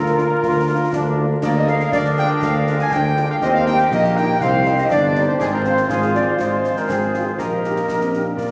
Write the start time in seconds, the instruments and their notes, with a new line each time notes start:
Already playing: tuba D2, trombone section F4, woodwind section F4 A#4, flute section A#4, cornet A#4
0.06 snare
0.18 french horn section A#3 D4 F4, snare
0.43 tuba D2, trombone section F4, concert bass drum, snare
0.68 french horn section A#3 D4 F4
0.93 tuba D2, trombone section D4, concert bass drum, snare
1.17 french horn section A#3 D4 F4
1.42 tuba D2, trombone section A#3, woodwind section G#4 A#4, flute section D5, cornet D5, concert bass drum, snare, crash
1.55 flute section D#5, cornet D#5
1.67 french horn section G#3 A#3 F4, flute section F5, cornet F5, snare
1.79 snare
1.91 tuba D2, trombone section D4, flute section D5, cornet D5, concert bass drum, snare
2.04 snare
2.16 french horn section G#3 A#3 F4, flute section G5, cornet G5, snare
2.41 tuba D2, flute section F5, cornet F5, concert bass drum, snare
2.67 french horn section G#3 A#3 F4, snare
2.78 flute section G#5, cornet G#5, snare
2.91 tuba D2, flute section G5, cornet G5, concert bass drum, snare
3.16 french horn section G#3 A#3 F4, snare
3.29 flute section F5, cornet F5
3.41 tuba D#2, trombone section C4, woodwind section G4 A#4, flute section D#5, cornet D#5, concert bass drum, snare
3.54 flute section F5, cornet F5
3.66 french horn section G3 A#3 D#4, flute section G5, cornet G5, snare
3.79 snare
3.91 tuba A#1, trombone section A#3, flute section D#5, cornet D#5, concert bass drum, snare
4.04 snare
4.16 french horn section G3 A#3 D#4, flute section G5, cornet G5, snare
4.40 tuba C2, trombone section C4, woodwind section C5, cornet F5, flute section F5, concert bass drum, snare
4.66 french horn section G3 C4 D#4, snare
4.78 flute section D#5, cornet D#5, snare
4.90 tuba G1, trombone section D4, flute section D5, cornet D5, concert bass drum, snare
5.15 french horn section G3 C4 D#4, snare
5.27 flute section C5, cornet C5
5.40 tuba G#1, trombone section C4, woodwind section F4 C5, flute section G#4, cornet G#4, concert bass drum, snare, crash
5.53 flute section A#4, cornet A#4
5.64 french horn section F3 C4 F4, flute section C5, cornet C5, snare
5.77 snare
5.89 tuba G#1, trombone section F4, flute section G#4, cornet G#4, concert bass drum, snare
6.02 snare
6.14 french horn section F3 C4 F4, cornet D5, flute section D5, snare
6.38 tuba G#1, trombone section G#3, cornet C5, flute section C5, concert bass drum, snare
6.64 french horn section F3 C4 F4, snare
6.77 cornet A#4, flute section A#4, snare
6.88 tuba G#1, trombone section C4, cornet G#4, flute section G#4, concert bass drum, snare
7.14 french horn section F3 C4 F4, snare
7.26 cornet C5, flute section C5
7.37 tuba A#1, trombone section A#3, woodwind section G4 D#5, cornet A#4, flute section A#4, concert bass drum, snare
7.64 french horn section A#3 D#4 G4, snare
7.76 snare
7.88 tuba A#1, euphonium A#3, concert bass drum, snare
8.01 euphonium C4, snare
8.13 french horn section A#3 D#4 G4, euphonium D4, snare
8.37 tuba A#1, euphonium A#3, woodwind section F4 D5, concert bass drum, snare